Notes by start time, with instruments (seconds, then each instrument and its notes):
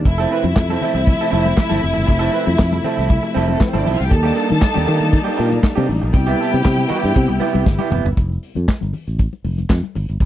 0.05 fingered electric bass F1, string section C3 F3 A3 E4 E5, muted clean electric guitar stroke, kick, closed hi-hat, muted conga, shaker
0.18 clean electric guitar C4 E4 A4, shaker
0.30 clean electric guitar C4 E4 B4, open hi-hat, shaker
0.44 fingered electric bass F2, muted clean electric guitar stroke, closed hi-hat, high conga, shaker
0.56 fingered electric bass F2, muted clean electric guitar stroke, kick, snare, clap, closed hi-hat, shaker
0.69 clean electric guitar C4 E4 A4, muted conga, high conga, shaker
0.81 clean electric guitar C4 E4 A4, open hi-hat, low conga
0.94 fingered electric bass C2, muted clean electric guitar stroke, closed hi-hat, low conga, shaker
1.06 muted clean electric guitar stroke, kick, closed hi-hat, muted conga, shaker
1.21 clean electric guitar C4 E4 A4, shaker
1.31 fingered electric bass F1, clean electric guitar C4 E4 A4, open hi-hat, high conga
1.46 muted clean electric guitar stroke, closed hi-hat, high conga, shaker
1.56 muted clean electric guitar stroke, kick, snare, clap, closed hi-hat, muted conga, high conga, shaker
1.69 fingered electric bass G1, clean electric guitar C4 E4 A4, muted conga, high conga, shaker
1.81 fingered electric bass F1, muted clean electric guitar stroke, open hi-hat, low conga, shaker
1.94 muted clean electric guitar stroke, closed hi-hat, shaker
1.98 fingered electric bass G1
2.06 fingered electric bass F1, muted clean electric guitar stroke, kick, closed hi-hat, muted conga, shaker
2.19 clean electric guitar C4 E4 A4, shaker
2.32 clean electric guitar C4 E4 B4, open hi-hat, shaker
2.46 fingered electric bass F2, muted clean electric guitar stroke, closed hi-hat, high conga, shaker
2.58 fingered electric bass F2, muted clean electric guitar stroke, kick, snare, clap, closed hi-hat, shaker
2.72 muted clean electric guitar stroke, muted conga, high conga, shaker
2.84 clean electric guitar C4 E4 A4, open hi-hat, low conga
2.97 fingered electric bass C2, clean electric guitar C4 E4 A4, snare, closed hi-hat, low conga, shaker
3.08 muted clean electric guitar stroke, kick, closed hi-hat, muted conga, shaker
3.23 muted clean electric guitar stroke, muted conga, shaker
3.34 fingered electric bass F1, clean electric guitar C4 E4 A4, open hi-hat, high conga
3.48 clean electric guitar C4 E4 A4, closed hi-hat, high conga, shaker
3.53 string section A3 A4
3.60 string section B3 B4, muted clean electric guitar stroke, kick, snare, clap, closed hi-hat, high conga, shaker
3.68 string section C4 C5
3.73 fingered electric bass G1, clean electric guitar C4 E4 A4, string section D4, high conga, shaker
3.78 string section D5
3.84 fingered electric bass B1, clean electric guitar C4 E4 A4, string section E4 E5, open hi-hat, low conga, shaker
3.96 string section F4 F5, muted clean electric guitar stroke, closed hi-hat, shaker
4.01 fingered electric bass C2, string section G4 G5
4.10 fingered electric bass D#2, string section G3 A#3 D4 D#4 A4 A5, muted clean electric guitar stroke, kick, closed hi-hat, shaker
4.23 clean electric guitar A#3 D4 G4, muted conga, shaker
4.35 clean electric guitar A#3 D4 A4, open hi-hat, shaker
4.49 fingered electric bass D#3, muted clean electric guitar stroke, closed hi-hat, high conga, shaker
4.61 muted clean electric guitar stroke, kick, snare, clap, closed hi-hat, shaker
4.74 fingered electric bass D#2, clean electric guitar A#3 D4 G4, muted conga, high conga, shaker
4.85 fingered electric bass D#3, clean electric guitar A#3 D4 G4, open hi-hat, low conga
4.99 muted clean electric guitar stroke, snare, closed hi-hat, low conga, shaker
5.12 muted clean electric guitar stroke, kick, closed hi-hat, muted conga, shaker
5.24 clean electric guitar A#3 D4 G4, muted conga, shaker
5.36 fingered electric bass A#2, clean electric guitar A#3 D4 G4, open hi-hat, high conga
5.50 muted clean electric guitar stroke, closed hi-hat, high conga, shaker
5.63 muted clean electric guitar stroke, kick, snare, clap, closed hi-hat, muted conga, high conga, shaker
5.75 fingered electric bass C3, clean electric guitar A#3 D4 G4, muted conga, high conga, shaker
5.88 fingered electric bass A1, muted clean electric guitar stroke, open hi-hat, low conga, shaker
6.01 fingered electric bass A#1, muted clean electric guitar stroke, closed hi-hat, shaker
6.13 fingered electric bass C2, string section C3 B3 E4 G4 G5, muted clean electric guitar stroke, kick, closed hi-hat, muted conga, shaker
6.27 clean electric guitar B3 E4 G4, muted conga, shaker
6.38 clean electric guitar B3 E4 A4, open hi-hat, shaker
6.52 fingered electric bass C3, muted clean electric guitar stroke, closed hi-hat, high conga, shaker
6.64 fingered electric bass C3, muted clean electric guitar stroke, kick, snare, clap, closed hi-hat, shaker
6.77 muted clean electric guitar stroke, high conga, shaker
6.88 clean electric guitar B3 E4 G4, open hi-hat, low conga
7.02 fingered electric bass G2, clean electric guitar B3 E4 G4, snare, closed hi-hat, low conga
7.06 shaker
7.14 fingered electric bass C3, muted clean electric guitar stroke, kick, closed hi-hat, muted conga, shaker
7.28 fingered electric bass C2, muted clean electric guitar stroke, shaker
7.40 clean electric guitar B3 E4 G4, open hi-hat, high conga
7.53 fingered electric bass C2, clean electric guitar B3 E4 G4, closed hi-hat, high conga, shaker
7.65 fingered electric bass G1, muted clean electric guitar stroke, kick, snare, muted conga, high conga, shaker
7.79 clean electric guitar B3 E4 G4, muted conga, high conga, shaker
7.90 fingered electric bass F1, clean electric guitar B3 E4 G4, mid tom, low conga, shaker
8.05 fingered electric bass G1, muted clean electric guitar stroke, floor tom, shaker
8.17 fingered electric bass F1, kick, closed hi-hat, shaker
8.30 muted conga, shaker
8.43 open hi-hat, shaker
8.55 fingered electric bass F2, closed hi-hat, high conga, shaker
8.68 kick, snare, clap, closed hi-hat, muted conga, shaker
8.81 fingered electric bass G1, high conga, shaker
8.93 open hi-hat, low conga
9.07 fingered electric bass A1, closed hi-hat, shaker
9.19 kick, closed hi-hat, muted conga, shaker
9.33 muted conga, shaker
9.44 fingered electric bass F1, open hi-hat, high conga
9.58 closed hi-hat, high conga, shaker
9.70 fingered electric bass F2, kick, snare, clap, closed hi-hat, shaker
9.83 muted conga, high conga, shaker
9.95 fingered electric bass G1, open hi-hat, low conga, shaker
10.08 fingered electric bass G1, closed hi-hat, shaker
10.20 fingered electric bass F1, kick, closed hi-hat, shaker